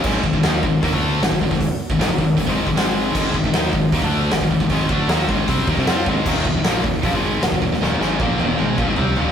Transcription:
<<
  \new Staff \with { instrumentName = "Distorted electric guitar" } { \clef bass \time 4/4 \key aes \lydian \tempo 4 = 155 <aes, ees aes>8 <aes, ees>16 <aes, ees>16 <ees bes ees'>8 <aes, ees>8 <ees bes>16 <d a d'>8. <aes, ees>16 <aes, ees>16 <aes, ees>16 <aes, ees>16~ | <aes, ees>16 r8 <aes, ees>16 <aes, ees>16 <aes, ees>16 <aes, ees>8 <aes, ees>16 <aes, ees aes>8 <aes, ees>16 <aes, ees aes>4 | <aes, ees aes>8 <aes, ees>16 <aes, ees>16 <ees bes ees'>8 <aes, ees>8 <ees bes>16 <d a d'>8. <aes, ees>16 <aes, ees>16 <aes, ees>16 <aes, ees>16 | <aes, ees aes>8 <d a d'>8 <ees bes ees'>8 <aes, ees aes>8 <c g c'>8 <ees bes>16 <c g>16 <f c' f'>8 <aes, ees aes>8 |
<ees, bes, ees>8 <ees, bes,>16 <ees, bes,>16 <bes, f bes>8 <ees, bes,>8 <bes, f>16 <aes, ees aes>8. <ees, bes,>16 <ees, bes,>16 <ees, bes,>16 <ees, bes,>16 | <ees, bes, ees>8 <aes, ees aes>8 <bes, f bes>8 <ees, bes, ees>8 <aes, ees aes>8 <bes, f>16 <aes, ees>16 <c g c'>8 <ees, bes, ees>8 | }
  \new Staff \with { instrumentName = "Distorted electric guitar" } { \clef bass \time 4/4 \key aes \lydian <aes, ees aes>8 <aes, ees>16 <aes, ees>16 <ees bes ees'>8 <aes, ees>8 <ees bes>16 <d a d'>8. <aes, ees>16 <aes, ees>16 <aes, ees>16 <aes, ees>16~ | <aes, ees>16 r8 <aes, ees>16 <aes, ees>16 <aes, ees>16 <aes, ees>8 <aes, ees>16 <aes, ees aes>8 <aes, ees>16 <aes, ees aes>4 | <aes, ees aes>8 <aes, ees>16 <aes, ees>16 <ees bes ees'>8 <aes, ees>8 <ees bes>16 <d a d'>8. <aes, ees>16 <aes, ees>16 <aes, ees>16 <aes, ees>16 | <aes, ees aes>8 <d a d'>8 <ees bes ees'>8 <aes, ees aes>8 <c g c'>8 <ees bes>16 <c g>16 <f c' f'>8 <aes, ees aes>8 |
<ees, bes, ees>8 <ees, bes,>16 <ees, bes,>16 <bes, f bes>8 <ees, bes,>8 <bes, f>16 <aes, ees aes>8. <ees, bes,>16 <ees, bes,>16 <ees, bes,>16 <ees, bes,>16 | <ees, bes, ees>8 <aes, ees aes>8 <bes, f bes>8 <ees, bes, ees>8 <aes, ees aes>8 <bes, f>16 <aes, ees>16 <c g c'>8 <ees, bes, ees>8 | }
  \new Staff \with { instrumentName = "Fingered electric bass" } { \clef bass \time 4/4 \key aes \lydian aes,,8 aes,,16 aes,,16 ees,8 aes,,8 ees,16 d,8. aes,,16 aes,,16 aes,,16 aes,,16~ | aes,,16 r8 aes,,16 aes,,16 aes,,16 aes,,8 aes,,16 aes,,8 aes,,16 aes,,4 | aes,,8 aes,,16 aes,,16 ees,8 aes,,8 ees,16 d,8. aes,,16 aes,,16 aes,,16 aes,,16 | aes,,8 d,8 ees,8 aes,,8 c,8 ees,16 c,16 f,8 aes,,8 |
ees,,8 ees,,16 ees,,16 bes,,8 ees,,8 bes,,16 aes,,8. ees,,16 ees,,16 ees,,16 ees,,16 | ees,,8 aes,,8 bes,,8 ees,,8 aes,,8 bes,,16 aes,,16 c,8 ees,,8 | }
  \new DrumStaff \with { instrumentName = "Drums" } \drummode { \time 4/4 <cymc bd>8 bd16 bd16 <hho sn>8 bd8 <hho bd>16 bd8. <hho sn>16 bd16 bd16 <bd sn>16 | <hho bd>8. bd16 <hho sn>16 bd16 bd8 <hho bd>16 bd8 bd16 <hho sn>4 | <cymc bd>8 bd16 bd16 <hho sn>8 bd8 <hho bd>16 bd8. <hho sn>16 bd16 bd16 bd16 | <hho bd>8 bd8 <hho sn>8 bd8 <hho bd>8 bd16 <bd sn>16 <hho sn>8 bd8 |
<cymc bd>8 bd16 bd16 <hho sn>8 bd8 <hho bd>16 bd8. <hho sn>16 bd16 bd16 sn16 | sn8 sn8 bd8 tommh8 toml8 bd8 tomfh8 tomfh8 | }
>>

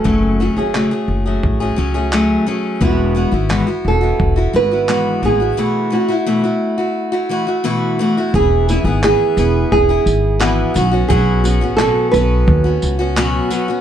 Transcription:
<<
  \new Staff \with { instrumentName = "Nylon-string guitar" } { \time 4/4 \key e \major \tempo 4 = 87 a'8 fis'16 gis'2~ gis'8. r8 | fis'4. a'4 b'4 gis'8~ | gis'8 fis'16 e'2~ e'8. r8 | gis'8 e'8 gis'4 gis'4 fis'4 |
gis'4 a'8 b'2 r8 | }
  \new Staff \with { instrumentName = "Steel-string acoustic guitar" } { \time 4/4 \key e \major <fis, cis fis a cis'>8 <fis a cis' gis'>16 <fis a cis' gis'>16 <fis, cis fis a cis' gis'>16 <fis a cis' gis'>8 <fis a cis' gis'>8 <fis a cis' gis'>16 <fis a cis' gis'>16 <fis a cis' gis'>16 <fis, cis fis a cis' gis'>8 <fis a cis' gis'>8 | <e gis b e' fis'>8 <gis b e' fis'>16 <b e' fis'>16 <e gis b e' fis'>16 <b e' fis'>8 <b e' fis'>8 <b e' fis'>16 <gis b e' fis'>16 <b e' fis'>16 <e gis b e' fis'>8 <gis b e' fis'>16 <b e' fis'>16 | <b, e a e' fis'>8 <e a e' fis'>16 <a e' fis'>16 <b, e a e' fis'>16 <a e' fis'>8 <a e' fis'>8 <a e' fis'>16 <e a e' fis'>16 <a e' fis'>16 <b, e a e' fis'>8 <e a e' fis'>16 <a e' fis'>16 | <e b e' gis'>8 <e b e' gis'>16 <b e' gis'>16 <e b e' gis'>8 <e b e' gis'>8. <b e' gis'>8. <e b e' gis'>8 <fis b cis' fis'>16 <b cis' fis'>16 |
<b, fis b cis' fis'>8 <fis b cis' fis'>16 <b cis' fis'>16 <b, fis b cis' fis'>8 <fis b cis' fis'>8. <b cis' fis'>8 <b cis' fis'>16 <b, fis b cis' fis'>8 <fis b cis' fis'>16 <b cis' fis'>16 | }
  \new Staff \with { instrumentName = "Upright bass" } { \clef bass \time 4/4 \key e \major fis,,8. fis,,8 r16 fis,,8 a,,8 cis,4 r8 | e,,8. gis,,8 r16 e,,8 e,,8 gis,,4 a,,8 | r1 | e,,8. gis,,8 r16 e,,8 e,,8 gis,,4 b,,8 |
b,,8. a,,8 r16 b,,8 dis,8 cis,4 r8 | }
  \new DrumStaff \with { instrumentName = "Drums" } \drummode { \time 4/4 bd4 hc4 bd4 hc4 | bd4 hc4 bd4 hc4 | r4 r4 r4 r4 | bd8 tamb8 hc8 tamb8 bd8 tamb8 hc8 tamb8 |
bd8 tamb8 hc8 tamb8 bd8 tamb8 hc8 tamb8 | }
>>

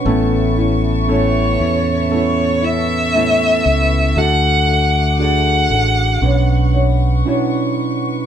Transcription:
<<
  \new Staff \with { instrumentName = "String section" } { \time 4/4 \key a \major \tempo 4 = 58 << { <b' e'' cis'''>1 | <a d'''>2 <b' cis'''>2 | } \\ { a''1 | fis''1 | } >> }
  \new Staff \with { instrumentName = "Violin" } { \time 4/4 \key a \major r4 cis''4 cis''8 e''4. | fis''4 fis''4. r4. | }
  \new Staff \with { instrumentName = "Tine electric piano" } { \time 4/4 \key a \major <b cis' a'>4 <b cis' a'>4 <b cis' a'>4 <b cis' a'>4 | <d' fis' a'>4 <d' fis' gis'>4 <cis' d' b'>4 <cis' d' e'>4 | }
  \new Staff \with { instrumentName = "Tine electric piano" } { \clef bass \time 4/4 \key a \major a,4. r2 r8 | d4. r8 b,4. r8 | }
  \new Staff \with { instrumentName = "Nylon-string guitar" } { \time 4/4 \key a \major <a, a b cis' e'>8 <b cis' e'>8 <a, a b cis' e'>8 <b cis' e'>8 <a b cis' e'>8 <b cis' e'>8 <a, a b cis' e'>4 | <d d' fis' a'>8 <d' fis' a'>8 <d d' fis' a'>8 <d' fis' a'>8 <b d' fis' cis''>8 <b d' fis' cis''>8 <b, fis b d' fis' cis''>4 | }
  \new Staff \with { instrumentName = "Fingered electric bass" } { \clef bass \time 4/4 \key a \major a,,4. e,2 cis,8 | d,4. a,,8 b,,4 r4 | }
>>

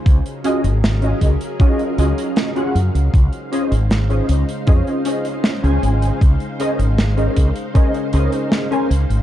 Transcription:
<<
  \new Staff \with { instrumentName = "Synth keys" } { \time 4/4 \key bes \minor \tempo 4 = 78 r8 <des' f' ges' aes' ees''>16 r8 <des' f' ges' aes' ees''>8 r16 <des' f' ges' aes' ees''>8 <des' f' ges' aes' ees''>8. <des' f' ges' aes' ges''>16 r8 | r8 <des' f' aes' c'' ees''>16 r8 <des' f' aes' c'' ees''>8 r16 <des' f' aes' c'' ees''>8 <des' f' aes' c'' ees''>8. <des' f' aes' c'' aes''>8. | r8 <des' aes' bes' c'' ees''>16 r8 <des' aes' bes' c'' ees''>8 r16 <des' aes' bes' c'' ees''>8 <des' aes' bes' c'' ees''>8. <des' aes' bes' c'' aes''>16 r8 | }
  \new Staff \with { instrumentName = "String machine" } { \time 4/4 \key bes \minor <des ges des' aes' bes' f''>1 | <des aes ees' c''>1~ | <des aes ees' c''>1 | }
  \new Staff \with { instrumentName = "Fretless electric bass" } { \clef bass \time 4/4 \key bes \minor des,16 r8 aes,,8. des,16 r8. des,16 r8. ges,16 des,16 | des,16 r8 aes,,8. des,16 r16 f,16 r4 des,16 aes,,16 r16 | des,16 r8 aes,,8. des,16 r8. des,16 r8. des,16 aes,,16 | }
  \new DrumStaff \with { instrumentName = "Drums" } \drummode { \time 4/4 <hh bd>16 hh16 hh16 hh16 <hh sn>16 hh16 <hh bd>16 hh16 <hh bd>16 hh16 hh16 hh16 <hh sn>16 hh16 hh16 hh16 | <hh bd>16 hh16 hh16 hh16 <hh sn>16 hh16 hh16 hh16 <hh bd>16 hh16 hh16 hh16 <hh sn>16 hh16 hh16 hh16 | <hh bd>16 hh16 hh16 hh16 <hh sn>16 hh16 <hh bd>16 hh16 <hh bd>16 hh16 hh16 hh16 <hh sn>16 hh16 hh16 hh16 | }
>>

